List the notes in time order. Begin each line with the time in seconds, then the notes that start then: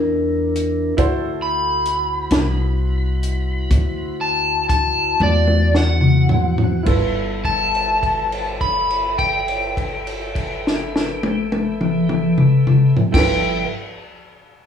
Already playing: E2 D4 E4 G4 A#4 D5
0.56 closed hi-hat
0.97 D2 E4 F#4 A4 C5, kick, closed hi-hat
1.42 B5
1.86 closed hi-hat
2.31 C2, snare, closed hi-hat
3.23 closed hi-hat
3.71 D2, kick, closed hi-hat
4.21 A5
4.69 A5, kick, closed hi-hat
5.20 E2 D5, high tom
5.47 high tom
5.75 F#5, snare
6.01 mid tom
6.29 floor tom
6.58 floor tom
6.83 G1 E4 F4, kick, crash
6.87 A4 B4 E5
7.45 A5, kick, crash
7.75 crash
8.03 kick, crash
8.32 crash
8.61 B5, kick, crash
8.91 crash
9.18 G5, kick, crash
9.48 crash
9.77 kick, crash
10.07 crash
10.35 kick, crash
10.67 snare
10.96 snare
11.23 high tom
11.52 high tom
11.81 mid tom
12.09 mid tom
12.38 mid tom
12.67 mid tom
12.97 floor tom
13.12 G1 F3 E4 F4 A4 B4 E5 G5, kick, crash
13.16 A4 B4, snare